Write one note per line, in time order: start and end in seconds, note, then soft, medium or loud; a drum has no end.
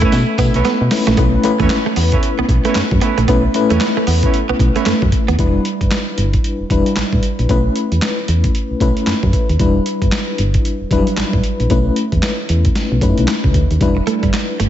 0.00 0.91 A3 medium
0.00 1.15 A3 medium
0.00 0.11 A3 medium
0.00 1.13 B3 medium
0.00 0.17 B3 medium
0.00 0.92 C#4 medium
0.00 0.17 C#4 medium
0.00 0.92 E4 medium
0.00 1.15 E4 medium
0.00 0.17 E4 medium
0.00 0.17 A4 medium
0.00 0.92 B4 medium
0.00 0.17 B4 medium
0.00 kick loud
0.00 closed hi-hat medium
0.12 0.25 B2 loud
0.12 snare medium
0.12 closed hi-hat medium
0.12 tambourine medium
0.38 0.50 B2 loud
0.38 0.52 B3 medium
0.38 kick medium
0.38 closed hi-hat medium
0.38 tambourine medium
0.54 0.63 B1 medium
0.54 0.70 B3 medium
0.54 0.69 C#4 medium
0.54 0.70 E4 medium
0.54 0.70 A4 medium
0.54 0.70 B4 medium
0.54 closed hi-hat medium
0.65 0.78 B3 medium
0.65 snare medium
0.65 closed hi-hat medium
0.81 0.89 B2 loud
0.91 1.12 A3 medium
0.91 1.13 C#4 medium
0.91 1.13 E4 medium
0.91 1.13 B4 medium
0.91 muted clean electric guitar stroke soft
0.91 snare loud
0.91 open hi-hat medium
1.07 1.15 A#1 medium
1.07 1.16 A3 medium
1.07 snare medium
1.07 closed hi-hat soft
1.17 1.37 B1 loud
1.17 1.39 A3 medium
1.17 1.31 B3 loud
1.17 1.39 C#4 medium
1.17 1.39 E4 medium
1.17 1.39 B4 medium
1.17 kick loud
1.17 closed hi-hat medium
1.44 2.23 A3 medium
1.44 2.23 C#4 medium
1.44 2.23 E4 medium
1.44 2.23 B4 loud
1.44 muted clean electric guitar stroke soft
1.44 closed hi-hat medium
1.60 1.68 E2 medium
1.60 1.68 A3 medium
1.60 1.75 B3 medium
1.60 1.75 C#4 medium
1.60 1.75 E4 medium
1.60 1.75 A4 medium
1.60 1.75 B4 medium
1.60 kick medium
1.60 closed hi-hat soft
1.70 muted clean electric guitar stroke soft
1.70 snare loud
1.70 clap medium
1.70 closed hi-hat medium
1.86 1.95 A3 medium
1.96 2.17 E2 medium
1.96 2.10 B3 medium
1.96 open hi-hat medium
2.12 2.28 B3 medium
2.12 2.27 C#4 medium
2.12 2.27 E4 medium
2.12 2.28 A4 medium
2.12 2.28 B4 medium
2.12 kick loud
2.12 closed hi-hat medium
2.23 closed hi-hat medium
2.39 2.43 B1 medium
2.39 2.47 B3 medium
2.49 2.61 B1 medium
2.49 muted clean electric guitar stroke soft
2.49 kick medium
2.49 closed hi-hat medium
2.65 2.74 A3 medium
2.65 2.80 B3 medium
2.65 2.80 C#4 medium
2.65 2.80 E4 medium
2.65 2.80 A4 medium
2.65 2.80 B4 medium
2.65 closed hi-hat medium
2.75 2.82 F#2 soft
2.75 muted clean electric guitar stroke soft
2.75 snare loud
2.75 clap medium
2.75 closed hi-hat medium
2.91 2.99 F#2 medium
2.91 kick loud
3.01 3.15 B3 medium
3.01 3.21 B3 medium
3.01 3.21 C#4 medium
3.01 3.21 E4 medium
3.01 3.21 A4 medium
3.01 3.21 B4 medium
3.01 closed hi-hat medium
3.18 3.26 A#1 medium
3.18 3.26 A3 medium
3.18 closed hi-hat soft
3.28 3.48 B1 loud
3.28 3.49 A3 medium
3.28 3.41 B3 medium
3.28 3.49 C#4 medium
3.28 3.50 E4 medium
3.28 3.50 B4 medium
3.28 kick loud
3.28 closed hi-hat medium
3.54 4.33 A3 loud
3.54 4.34 C#4 medium
3.54 4.34 E4 medium
3.54 4.34 B4 loud
3.54 muted clean electric guitar stroke soft
3.54 closed hi-hat medium
3.70 3.78 E2 loud
3.70 3.79 A3 medium
3.70 3.86 B3 medium
3.70 3.85 C#4 medium
3.70 3.85 E4 medium
3.70 3.86 A4 medium
3.70 3.86 B4 medium
3.70 closed hi-hat soft
3.81 muted clean electric guitar stroke soft
3.81 snare loud
3.81 clap medium
3.81 closed hi-hat medium
3.97 4.06 A3 medium
4.07 4.27 E2 medium
4.07 4.20 B3 medium
4.07 open hi-hat medium
4.23 4.38 B3 medium
4.23 4.38 C#4 medium
4.23 4.38 E4 medium
4.23 4.38 A4 medium
4.23 4.38 B4 medium
4.23 kick loud
4.23 closed hi-hat medium
4.34 closed hi-hat medium
4.49 4.54 B1 medium
4.49 4.58 B3 medium
4.59 4.72 B1 medium
4.59 muted clean electric guitar stroke soft
4.59 kick medium
4.59 closed hi-hat medium
4.75 4.84 A3 medium
4.75 4.91 B3 medium
4.75 4.91 C#4 medium
4.75 4.91 E4 medium
4.75 4.91 A4 medium
4.75 4.91 B4 medium
4.75 closed hi-hat medium
4.86 4.93 F#2 soft
4.86 4.99 A3 medium
4.86 snare loud
4.86 clap medium
4.86 closed hi-hat medium
5.02 5.10 F#2 loud
5.02 muted clean electric guitar stroke soft
5.02 kick medium
5.12 kick loud
5.12 closed hi-hat medium
5.28 5.36 D#2 medium
5.28 5.37 B3 medium
5.28 closed hi-hat soft
5.39 5.59 E1 loud
5.39 6.18 G3 medium
5.39 6.18 D4 medium
5.39 6.18 E4 medium
5.39 6.18 B4 medium
5.39 kick loud
5.39 closed hi-hat medium
5.65 closed hi-hat medium
5.81 5.89 G1 medium
5.81 kick medium
5.81 closed hi-hat soft
5.91 snare loud
5.91 clap medium
5.91 closed hi-hat medium
6.18 6.38 G1 medium
6.18 closed hi-hat medium
6.33 kick medium
6.33 closed hi-hat soft
6.44 closed hi-hat medium
6.60 6.64 E1 medium
6.70 6.82 E1 medium
6.70 7.31 G3 medium
6.70 7.31 D4 medium
6.70 7.31 E4 medium
6.70 7.31 B4 medium
6.70 kick medium
6.70 closed hi-hat medium
6.86 closed hi-hat medium
6.96 7.03 A1 medium
6.96 snare loud
6.96 clap medium
6.96 closed hi-hat medium
7.13 7.21 A1 medium
7.13 kick medium
7.23 closed hi-hat medium
7.39 7.47 A#1 medium
7.39 closed hi-hat soft
7.49 7.69 B1 loud
7.49 8.28 A3 medium
7.49 8.28 C#4 medium
7.49 8.29 E4 medium
7.49 8.29 B4 medium
7.49 kick loud
7.49 closed hi-hat medium
7.76 closed hi-hat medium
7.92 8.00 E2 medium
7.92 closed hi-hat soft
8.02 snare loud
8.02 clap loud
8.02 closed hi-hat medium
8.28 8.48 E2 medium
8.28 closed hi-hat medium
8.44 kick medium
8.44 closed hi-hat medium
8.55 closed hi-hat medium
8.71 8.75 B1 medium
8.80 8.93 B1 medium
8.80 9.41 A3 medium
8.80 9.41 C#4 medium
8.80 9.42 E4 medium
8.80 9.42 B4 medium
8.80 kick medium
8.80 closed hi-hat medium
8.97 closed hi-hat soft
9.07 9.14 F#2 soft
9.07 snare loud
9.07 clap medium
9.07 closed hi-hat medium
9.23 9.31 F#2 medium
9.23 kick medium
9.33 kick medium
9.33 closed hi-hat medium
9.49 9.57 D#2 medium
9.49 closed hi-hat soft
9.59 9.80 E1 loud
9.59 10.39 G3 medium
9.59 10.39 D4 medium
9.59 10.39 E4 medium
9.59 10.39 B4 medium
9.59 kick medium
9.59 closed hi-hat medium
9.86 closed hi-hat medium
10.02 10.10 G1 medium
10.02 kick medium
10.02 closed hi-hat soft
10.12 snare loud
10.12 clap medium
10.12 closed hi-hat medium
10.38 10.59 G1 loud
10.38 closed hi-hat medium
10.54 kick medium
10.54 closed hi-hat medium
10.65 closed hi-hat medium
10.81 10.85 E1 soft
10.91 11.03 E1 medium
10.91 10.99 F#3 medium
10.91 11.52 D4 medium
10.91 11.52 E4 medium
10.91 11.52 B4 medium
10.91 kick medium
10.91 closed hi-hat medium
10.98 11.55 G3 medium
11.07 closed hi-hat medium
11.17 11.24 A1 medium
11.17 snare loud
11.17 clap medium
11.17 closed hi-hat medium
11.33 11.41 A1 medium
11.33 kick medium
11.44 closed hi-hat medium
11.60 11.68 A#1 medium
11.60 closed hi-hat soft
11.70 11.90 B1 loud
11.70 12.49 A3 medium
11.70 12.49 C#4 medium
11.70 12.49 E4 medium
11.70 12.50 B4 medium
11.70 kick loud
11.70 closed hi-hat medium
11.96 closed hi-hat medium
12.12 12.20 E2 medium
12.12 kick medium
12.12 closed hi-hat soft
12.23 snare loud
12.23 clap medium
12.23 closed hi-hat medium
12.49 12.69 E2 medium
12.49 closed hi-hat medium
12.65 kick medium
12.65 closed hi-hat medium
12.75 snare medium
12.75 closed hi-hat medium
12.92 13.00 B1 loud
13.01 13.14 F#2 medium
13.01 13.62 A3 medium
13.01 13.62 C#4 medium
13.01 13.10 D#4 medium
13.01 13.63 B4 medium
13.01 kick medium
13.01 closed hi-hat medium
13.09 13.66 E4 medium
13.18 13.26 B1 medium
13.18 closed hi-hat soft
13.28 snare loud
13.28 clap medium
13.28 closed hi-hat medium
13.44 13.52 C#2 medium
13.44 kick medium
13.54 13.66 D2 medium
13.54 kick medium
13.54 closed hi-hat medium
13.71 13.78 D#2 medium
13.71 closed hi-hat soft
13.81 14.01 E1 loud
13.81 14.60 G3 medium
13.81 14.60 D4 medium
13.81 14.60 E4 medium
13.81 14.60 B4 medium
13.81 kick loud
13.81 closed hi-hat medium
13.97 muted clean electric guitar stroke soft
14.07 14.20 A3 medium
14.07 closed hi-hat medium
14.23 14.31 G1 medium
14.23 14.32 G3 medium
14.23 kick medium
14.23 closed hi-hat soft
14.34 snare loud
14.34 clap medium
14.34 closed hi-hat medium
14.60 14.69 G1 medium
14.60 14.69 A3 medium
14.60 closed hi-hat medium